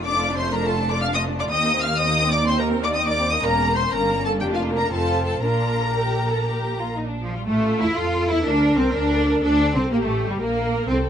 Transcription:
Already playing: double bass section F1, cello section F2
0.04 violin section D4 D6, viola section D5
0.16 violin section A3 F4
0.29 violin section D4
0.37 violin section A3 F4 C6, viola section C5
0.52 violin section D4 A#5, viola section A#4
0.65 violin section A3 F4 A5, viola section A4
0.78 violin section D4
0.89 violin section A3 F4 D6, viola section D5
1.02 violin section D4 F6, viola section F5
1.14 violin section A3 F4 D#6, viola section D#5
1.27 violin section D4
1.39 violin section A3 F4 D6, viola section D5
1.49 cello section D#2, double bass section D#2, violin section C4 D#6, viola section D#5
1.63 violin section A#3 D#4
1.74 violin section C4
1.82 viola section F5, violin section F6
1.86 violin section A#3 D#4
1.97 violin section C4 D#6, viola section D#5
2.10 violin section A#3 D#4
2.21 violin section C4
2.30 violin section A#3 D6, viola section D5
2.34 violin section D#4
2.46 violin section C4 C6, viola section C5
2.59 violin section A#3 D#4 A#5, viola section A#4
2.69 violin section C4
2.82 violin section A#3 D#4 D6, viola section D5
2.94 violin section C4 D#6, viola section D#5
3.06 violin section A#3 D#4 D6, viola section D5
3.19 violin section C4
3.31 violin section A#3 D#4 D#6, viola section D#5
3.42 double bass section E1, cello section E2, violin section A#3 C#4 A#5, viola section A#4
3.75 viola section C5, violin section C6
3.91 double bass section G1, cello section G2, violin section A#3 C#4 A#5, viola section A#4
4.25 viola section A4, violin section A5
4.40 double bass section F1, cello section F2, violin section A#3 D4 G5, viola section G4
4.53 viola section F4, violin section F5
4.74 viola section A#4, violin section A#5
4.91 double bass section F1, cello section F2, violin section C4 F4 A5, viola section A4
5.24 viola section A4, violin section A5
5.42 double bass section A#1, cello section A#2, violin section D4 F4 A#5, viola section A#4
5.94 violin section G4
6.29 violin section A4
6.45 violin section G4
6.79 violin section F4
6.96 violin section D#4
7.07 violin section D4
7.22 cello section F3
7.34 cello section G3, violin section F4
7.46 double bass section A1, violin section A3, cello section A3, viola section F4
7.78 double bass section E2, violin section E4, cello section E4
7.95 double bass section F2, violin section F4, cello section F4, viola section A4
8.27 double bass section E2, violin section E4, cello section E4
8.31 violin section E4
8.43 double bass section D2, violin section D4, cello section D4, viola section A#4
8.76 double bass section C2, violin section C4, cello section C4
8.93 double bass section D2, cello section D4, violin section D4
9.41 double bass section D2, violin section D4, cello section D4, viola section A4
9.74 double bass section C2, violin section C4, cello section C4
9.90 double bass section A#1, violin section A#3, cello section A#3, viola section G4
10.01 double bass section A1, violin section A3, cello section A3
10.06 violin section A3
10.27 double bass section G1, violin section G3, cello section G3
10.31 violin section G3
10.39 double bass section A#1, cello section A#3, violin section A#3, viola section A#4
10.87 double bass section C2, cello section C4, violin section C4, viola section A4

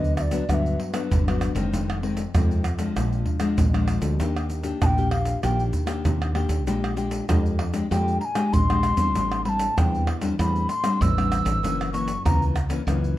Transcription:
Already playing: fretless electric bass D2, nylon-string guitar D3 F#3 B3, flute D#5
0.04 pandeiro, shaker
0.17 flute E5, pandeiro, tamborim, shaker
0.22 flute D5
0.31 nylon-string guitar F#3 B3 D4, pandeiro, shaker
0.49 fretless electric bass D2, nylon-string guitar G2 F#3 B3 D4, flute F#5, pandeiro, tamborim, shaker, surdo
0.54 flute E5
0.66 pandeiro, shaker
0.80 pandeiro
0.93 nylon-string guitar F#3 B3 D4, pandeiro, tamborim, shaker
1.11 fretless electric bass G1, nylon-string guitar D3, pandeiro, shaker, surdo
1.28 nylon-string guitar F#3 B3 D4, pandeiro, tamborim, shaker
1.41 pandeiro, tamborim, shaker
1.55 fretless electric bass F#1, nylon-string guitar D#3 G#3 C4, pandeiro, shaker
1.72 fretless electric bass F1, nylon-string guitar F2, pandeiro, shaker, surdo
1.90 pandeiro, tamborim, shaker
2.03 nylon-string guitar D#3 G#3 C4, pandeiro
2.17 pandeiro, shaker
2.34 fretless electric bass F2, nylon-string guitar C3 D#3 G#3 C4, pandeiro, tamborim, shaker, surdo
2.51 pandeiro, shaker
2.64 pandeiro, tamborim, shaker
2.78 nylon-string guitar F3 G#3 D4, pandeiro, shaker
2.96 fretless electric bass A#1, nylon-string guitar A#2, pandeiro, tamborim, shaker, surdo
3.13 pandeiro, shaker
3.26 pandeiro, surdo
3.40 nylon-string guitar F3 G#3 D4, pandeiro, tamborim, shaker
3.58 fretless electric bass A#1, nylon-string guitar F2, pandeiro, shaker, surdo
3.74 nylon-string guitar F3 G#3 D4, pandeiro, tamborim, shaker
3.88 pandeiro, tamborim, shaker
4.02 fretless electric bass D2, pandeiro, shaker
4.20 fretless electric bass D#2, nylon-string guitar D#3 A#3 D4 G4, pandeiro, shaker, surdo
4.36 pandeiro, tamborim, shaker
4.50 pandeiro, shaker
4.63 nylon-string guitar A#3 D4 G4, pandeiro, shaker
4.82 fretless electric bass A#1, nylon-string guitar A#2, flute A5, pandeiro, tamborim, shaker, surdo
4.86 flute G5
4.97 nylon-string guitar A#3 D4 G4, pandeiro, shaker
5.11 flute F5, pandeiro, tamborim
5.25 pandeiro, shaker
5.43 fretless electric bass A#1, nylon-string guitar D#3 A#3 D4 G4, flute G5, pandeiro, tamborim, shaker, surdo
5.59 pandeiro, shaker
5.73 pandeiro, shaker, surdo
5.86 nylon-string guitar A#3 D4 G4, pandeiro, tamborim, shaker
6.05 fretless electric bass D#2, nylon-string guitar A#2, pandeiro, shaker, surdo
6.22 pandeiro, tamborim, shaker
6.35 nylon-string guitar A#3 D4 G4, pandeiro, tamborim
6.49 fretless electric bass D#2, pandeiro, shaker
6.67 fretless electric bass A#1, nylon-string guitar A#2 G#3 D4 G4, pandeiro, shaker, surdo
6.84 pandeiro, tamborim, shaker
6.96 nylon-string guitar G#3 D4 G4, pandeiro, shaker
7.11 pandeiro, shaker
7.29 nylon-string guitar F2 G#3 D4 G4, fretless electric bass F2, pandeiro, tamborim, shaker, surdo
7.46 pandeiro, shaker
7.59 pandeiro, tamborim
7.73 nylon-string guitar G#3 D4 G4, pandeiro, shaker
7.90 fretless electric bass F2, nylon-string guitar A#2 G#3 D4 G4, flute G5, pandeiro, tamborim, shaker, surdo
8.08 pandeiro, shaker
8.21 flute A#5, pandeiro
8.25 flute G#5
8.35 nylon-string guitar G#3 D4 G4, pandeiro, tamborim, shaker
8.53 fretless electric bass A#1, nylon-string guitar F2, flute C6, pandeiro, shaker, surdo
8.69 nylon-string guitar G#3 D4 G4, pandeiro, tamborim, shaker
8.83 pandeiro, tamborim, shaker
8.96 fretless electric bass E2, nylon-string guitar G3 C4 D4, pandeiro, shaker
9.15 fretless electric bass A1, nylon-string guitar A2, pandeiro, shaker, surdo
9.32 pandeiro, tamborim, shaker
9.45 nylon-string guitar G3 C4 D4, flute B5, pandeiro
9.49 flute A5
9.59 pandeiro, shaker
9.77 fretless electric bass E2, nylon-string guitar E3 G3 C4 D4, flute G5, pandeiro, tamborim, shaker, surdo
9.94 pandeiro, shaker
10.07 pandeiro, tamborim
10.21 nylon-string guitar G3 C4 D4, pandeiro, shaker
10.39 fretless electric bass E2, nylon-string guitar A2 G3 C4 D4, flute B5, pandeiro, tamborim, shaker, surdo
10.56 pandeiro, shaker
10.69 flute C6, pandeiro, shaker
10.83 nylon-string guitar G3 C4 D4, pandeiro, tamborim, shaker
11.01 fretless electric bass A1, nylon-string guitar E3, flute E6, pandeiro, shaker, surdo
11.17 nylon-string guitar G3 C4 D4, pandeiro, tamborim, shaker
11.32 pandeiro, tamborim, shaker
11.45 fretless electric bass A1, pandeiro, shaker
11.63 fretless electric bass F#1, nylon-string guitar F#2 E3 A#3 C#4, pandeiro, shaker, surdo
11.81 pandeiro, tamborim, shaker
11.93 nylon-string guitar E3 A#3 C#4, flute C#6, pandeiro, shaker
12.08 pandeiro, shaker
12.25 fretless electric bass C#2, nylon-string guitar C#3 E3 A#3 C#4, flute A#5, pandeiro, tamborim, shaker, surdo
12.42 pandeiro, shaker
12.56 pandeiro, tamborim, shaker
12.69 nylon-string guitar E3 A#3 C#4, pandeiro, shaker
12.87 fretless electric bass C#2, nylon-string guitar F#2 E3 A#3 C#4, pandeiro, tamborim, shaker, surdo
13.04 pandeiro, shaker

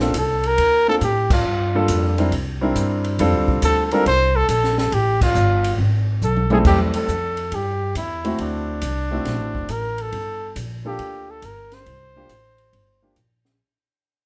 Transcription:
Already playing: upright bass A#1
0.00 grand piano A#3 C4 D4 F4 A4, snare
0.14 upright bass C2, trumpet A4, kick, hi-hat pedal, ride
0.43 trumpet A#4, ride
0.58 upright bass D2, kick, ride
0.88 grand piano A#3 C4 D4 F4 A4, trumpet A4
1.01 upright bass A2, trumpet G4, kick, hi-hat pedal, ride
1.30 trumpet F4, kick, crash
1.45 upright bass G2
1.75 grand piano G3 A#3 D4 F4 A4
1.88 upright bass F2, kick, hi-hat pedal, ride
2.18 grand piano G3 C4 D4 E4 A#4, ride
2.32 upright bass C2, kick, ride
2.61 grand piano G3 C4 D4 E4 A#4
2.75 upright bass G2, kick, hi-hat pedal, ride
3.04 ride
3.19 upright bass F2, grand piano G3 C4 D4 F4 A4, kick, ride
3.34 upright bass D2
3.48 upright bass C2, kick
3.62 upright bass D2, trumpet A4, kick, hi-hat pedal, ride
3.85 trumpet A4
3.91 grand piano G3 C4 D4 F4 A4, trumpet A#4, ride
4.06 upright bass C2, trumpet C5, kick, ride
4.36 trumpet A4
4.49 upright bass A#1, trumpet A4, kick, hi-hat pedal, ride
4.64 snare
4.78 trumpet A4, snare
4.92 upright bass A1, trumpet G4, kick, ride
5.21 trumpet F4, kick, crash
5.35 upright bass G1, hi-hat pedal
5.64 ride
5.78 upright bass G#1, kick
6.22 upright bass B1, trumpet A4, hi-hat pedal, mid tom
6.36 mid tom
6.50 grand piano G3 A3 C4 E4 A4, trumpet G#4, mid tom
6.65 upright bass E2, trumpet G4, kick, crash
6.94 trumpet A4, ride
7.08 upright bass F2, kick, hi-hat pedal
7.37 ride
7.52 upright bass G2, trumpet G4, kick, ride
7.95 upright bass E2, trumpet E4, kick, hi-hat pedal, ride
8.25 grand piano A3 C4 E4 F#4, ride
8.38 upright bass D2, trumpet D4, kick, ride
8.82 upright bass C2, kick, hi-hat pedal, ride
9.11 grand piano A3 C4 E4 F#4
9.25 upright bass A#1, kick, snare, ride
9.39 upright bass A1
9.54 upright bass F#1, kick
9.69 upright bass A1, trumpet A#4, kick, hi-hat pedal, ride
9.98 trumpet A4, ride
10.12 upright bass G1, kick, ride
10.56 upright bass A#1, kick, hi-hat pedal, ride
10.85 grand piano A#3 D4 F4 A4, trumpet G4
10.99 upright bass D2, kick, ride
11.30 trumpet A4
11.42 upright bass G1, trumpet A#4, kick, hi-hat pedal, ride
11.72 trumpet C5, snare, ride
11.86 upright bass C2, kick, ride
12.16 grand piano A#3 D4 F4 G4
12.29 upright bass A1, kick, hi-hat pedal, ride
12.58 ride
12.73 upright bass G1, kick, ride
13.02 grand piano A#3 D4 F4 G4
13.16 upright bass A#1, kick, hi-hat pedal, ride
13.45 snare

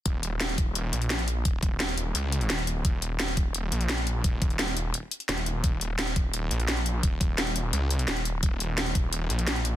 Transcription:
0.06 detuned saw bass D#1, kick, closed hi-hat
0.23 closed hi-hat
0.41 snare, closed hi-hat
0.49 closed hi-hat
0.58 kick, closed hi-hat
0.75 closed hi-hat
0.93 detuned saw bass A#1, closed hi-hat
1.02 closed hi-hat
1.10 snare, closed hi-hat
1.19 closed hi-hat
1.28 closed hi-hat
1.45 detuned saw bass D#1, kick, closed hi-hat
1.63 detuned saw bass D#1, kick, closed hi-hat
1.80 snare, closed hi-hat
1.89 closed hi-hat
1.97 detuned saw bass D#1, closed hi-hat
2.15 detuned saw bass C#2, closed hi-hat
2.32 closed hi-hat
2.41 closed hi-hat
2.50 detuned saw bass D#1, snare, closed hi-hat
2.59 closed hi-hat
2.67 closed hi-hat
2.85 detuned saw bass D#1, kick, closed hi-hat
3.02 closed hi-hat
3.20 snare, closed hi-hat
3.28 closed hi-hat
3.37 kick, closed hi-hat
3.55 closed hi-hat
3.72 detuned saw bass A#1, closed hi-hat
3.81 closed hi-hat
3.89 snare, closed hi-hat
3.98 closed hi-hat
4.07 closed hi-hat
4.24 detuned saw bass D#1, kick, closed hi-hat
4.42 detuned saw bass D#1, kick, closed hi-hat
4.50 closed hi-hat
4.59 snare, closed hi-hat
4.68 closed hi-hat
4.77 detuned saw bass D#1, closed hi-hat
4.94 closed hi-hat
5.11 closed hi-hat
5.20 closed hi-hat
5.29 detuned saw bass D#1, snare, closed hi-hat
5.38 closed hi-hat
5.46 closed hi-hat
5.64 detuned saw bass D#1, kick, closed hi-hat
5.81 closed hi-hat
5.99 snare, closed hi-hat
6.07 closed hi-hat
6.16 kick, closed hi-hat
6.34 closed hi-hat
6.51 detuned saw bass A#1, closed hi-hat
6.60 closed hi-hat
6.68 snare, closed hi-hat
6.77 closed hi-hat
6.86 closed hi-hat
7.03 detuned saw bass D#1, kick, closed hi-hat
7.21 detuned saw bass D#1, kick, closed hi-hat
7.38 snare, closed hi-hat
7.47 closed hi-hat
7.56 detuned saw bass D#1, closed hi-hat
7.73 detuned saw bass C#2, closed hi-hat
7.91 closed hi-hat
7.99 closed hi-hat
8.08 detuned saw bass D#1, snare, closed hi-hat
8.17 closed hi-hat
8.25 closed hi-hat
8.43 detuned saw bass D#1, kick, closed hi-hat
8.60 closed hi-hat
8.78 snare, closed hi-hat
8.86 closed hi-hat
8.95 kick, closed hi-hat
9.13 closed hi-hat
9.30 detuned saw bass A#1, closed hi-hat
9.39 closed hi-hat
9.47 snare, closed hi-hat
9.56 closed hi-hat
9.65 closed hi-hat

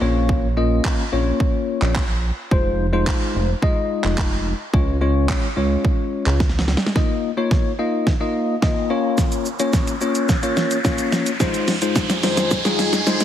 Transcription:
0.01 analog synth bass A#1, tine electric piano A#3 C#4 F4 C#5
0.29 kick
0.57 tine electric piano A#3 C#4 F4 D#5
0.85 kick, clap
1.12 analog synth bass A#1, tine electric piano A#3 C#4 F4 C#5
1.40 kick
1.82 analog synth bass A#1, clap
1.96 kick, clap
2.51 analog synth bass F1, tine electric piano G#3 D#4 F4 C5, kick
2.93 tine electric piano G#3 D#4 F4 C5
3.07 kick, clap
3.35 analog synth bass F1
3.62 tine electric piano G#3 D#4 F4 D#5, kick
4.04 analog synth bass F1, clap
4.18 kick, clap
4.73 analog synth bass C#2, tine electric piano G#3 C#4 F4 C#5, kick
5.01 tine electric piano G#3 C#4 F4 C#5
5.29 kick, clap
5.57 analog synth bass C#2, tine electric piano G#3 C#4 F4 C#5
5.85 kick
6.26 analog synth bass C#2, clap
6.40 kick, snare
6.49 snare
6.59 snare
6.68 snare
6.77 snare
6.86 snare
6.95 tine electric piano A#3 D#4 F4 D#5, kick, snare, riser
7.37 tine electric piano A#3 D#4 F4 C#5
7.51 kick, snare
7.79 tine electric piano A#3 D#4 F4 D#5
8.07 kick, snare
8.20 tine electric piano A#3 D#4 F4 D#5
8.62 tine electric piano A#3 D#4 F4 D#5, kick, snare
8.90 tine electric piano A#3 C#4 F4 C#5
9.18 kick, snare, shaker
9.32 closed hi-hat, shaker
9.46 shaker
9.59 tine electric piano A#3 C#4 F4 C#5, closed hi-hat, shaker
9.73 kick, snare, shaker
9.87 closed hi-hat, shaker
10.01 tine electric piano A#3 C#4 F4 C#5, shaker
10.15 closed hi-hat, shaker
10.29 kick, snare, shaker
10.43 tine electric piano A#3 C#4 F4 C#5, closed hi-hat, shaker
10.57 snare, shaker
10.71 closed hi-hat, shaker
10.84 tine electric piano A#3 C#4 F4 C#5, kick, snare, shaker
10.98 closed hi-hat, shaker
11.12 snare, shaker
11.26 closed hi-hat, shaker
11.40 ambient pad F2 D#3 G#4, tine electric piano G#3 D#4 F4 C5, kick, snare, shaker
11.54 closed hi-hat, shaker
11.68 snare, open hi-hat, shaker
11.82 tine electric piano G#3 D#4 F4 C5, closed hi-hat, shaker
11.96 kick, snare, shaker
12.10 snare, closed hi-hat, shaker
12.23 tine electric piano G#3 D#4 F4 C5, snare, open hi-hat, shaker
12.37 snare, closed hi-hat, shaker
12.51 kick, snare, shaker
12.65 tine electric piano G#3 D#4 F4 G#4, snare, closed hi-hat, shaker
12.79 snare, open hi-hat, shaker
12.93 snare, closed hi-hat, shaker
13.07 tine electric piano G#3 D#4 F4 C5, snare, shaker
13.20 snare, closed hi-hat, shaker

